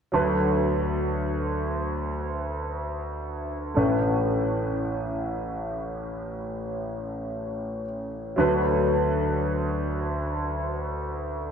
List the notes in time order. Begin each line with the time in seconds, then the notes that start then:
0.12 D2 D3 F#3 D4 B4
3.74 A1 A2 A3 C#4
3.78 B4
8.36 D2 D3 F#3 D4 B4